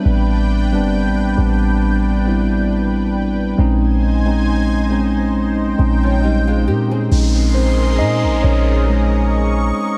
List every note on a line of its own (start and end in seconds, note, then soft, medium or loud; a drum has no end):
0.00 0.49 G3 medium
0.00 0.50 B3 medium
0.00 0.50 C4 medium
0.00 0.50 D4 loud
0.00 3.55 D4 medium
0.00 3.55 B4 medium
0.00 3.60 E5 medium
0.00 3.55 G5 medium
0.05 0.75 A1 loud
0.73 1.07 G1 loud
0.73 1.25 G3 medium
0.73 1.26 B3 medium
0.73 1.26 C4 medium
0.73 1.26 D4 medium
1.06 1.36 A1 loud
1.37 3.54 A1 loud
1.37 2.09 G3 medium
1.37 2.10 B3 medium
1.37 2.10 C4 medium
1.37 2.11 D4 medium
2.25 3.33 G3 medium
2.25 3.33 B3 medium
2.25 3.33 C4 medium
2.25 3.34 E4 medium
3.58 5.75 A#1 loud
3.58 4.12 G#3 loud
3.58 4.12 C4 medium
3.58 4.12 C#4 medium
3.58 7.08 D#4 medium
3.58 4.13 D#4 loud
3.58 7.08 C5 medium
3.58 5.33 G#5 medium
4.25 4.78 G#3 medium
4.25 4.78 C4 medium
4.25 4.79 C#4 medium
4.25 4.79 D#4 medium
4.90 5.62 G#3 medium
4.90 5.63 C4 medium
4.90 5.63 C#4 medium
4.90 5.63 D#4 medium
5.35 7.10 G5 medium
5.78 6.69 A#1 loud
5.78 6.86 G#3 medium
5.78 6.86 C4 medium
5.78 6.86 C#4 medium
5.78 6.87 D#4 medium
6.03 6.22 F3 medium
6.03 6.22 C#4 medium
6.23 6.46 G3 medium
6.23 6.46 D#4 medium
6.47 6.67 G#3 medium
6.47 6.66 F4 medium
6.67 7.09 A#2 loud
6.67 6.90 A#3 medium
6.67 6.90 G4 medium
6.91 7.33 C4 medium
6.91 7.33 G#4 medium
7.11 8.01 A#1 loud
7.11 8.40 G#3 medium
7.11 7.56 C4 medium
7.11 8.40 C#4 medium
7.11 8.00 D#4 medium
7.11 9.98 G#4 medium
7.11 9.98 A#4 medium
7.11 9.98 D#5 medium
7.11 8.86 C6 medium
7.11 downlifter medium
7.54 7.97 C4 medium
7.54 7.96 C5 medium
7.99 8.25 A#2 loud
7.99 8.41 D#4 medium
7.99 8.45 D#5 loud
8.24 8.43 A#1 loud
8.43 9.72 A#1 loud
8.43 8.65 C#4 medium
8.43 8.63 C#5 loud
8.86 9.98 G#3 medium
8.86 9.98 G#4 medium
8.86 9.98 C#6 medium